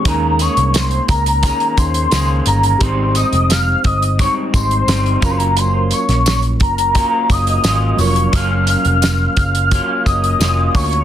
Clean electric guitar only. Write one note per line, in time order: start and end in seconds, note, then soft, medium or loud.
0.06 0.40 D#3 medium
0.06 0.41 A#3 medium
0.06 0.40 C#4 medium
0.06 0.38 G#4 medium
0.40 1.43 A#3 soft
0.40 1.44 C#4 soft
0.40 1.46 G#4 medium
1.43 2.12 D#3 medium
1.43 2.13 A#3 medium
1.43 2.13 C#4 medium
1.43 2.15 G#4 medium
2.12 2.81 D#3 medium
2.12 2.82 A#3 medium
2.12 2.82 C#4 medium
2.12 2.84 G#4 medium
2.80 3.15 G#2 medium
2.80 3.16 G3 medium
2.80 3.15 C4 medium
2.80 3.13 D#4 medium
3.14 4.18 G3 soft
3.14 4.19 C4 soft
3.14 4.19 D#4 soft
4.18 4.88 G#2 medium
4.18 4.87 G3 medium
4.18 4.88 C4 medium
4.18 4.89 D#4 medium
4.88 5.23 G3 medium
4.88 5.23 C4 medium
4.88 5.22 D#4 medium
5.21 6.96 A#3 medium
5.21 6.97 C#4 medium
5.21 6.94 F4 medium
5.26 6.93 F#3 medium
6.95 7.62 F#3 medium
6.95 7.65 A#3 medium
6.95 7.66 C#4 medium
6.95 7.66 F4 medium
7.64 8.31 F#3 medium
7.64 8.34 A#3 medium
7.64 8.35 C#4 medium
7.64 8.35 F4 medium
8.32 9.70 F#3 medium
8.32 9.72 A#3 medium
8.32 9.73 C#4 medium
8.37 9.73 F4 medium
9.71 10.38 F#3 medium
9.71 10.40 A#3 medium
9.71 10.41 C#4 medium
9.71 10.42 F4 medium
10.39 11.04 F#3 medium
10.39 11.04 A#3 medium
10.39 11.04 C#4 medium
10.39 11.04 F4 medium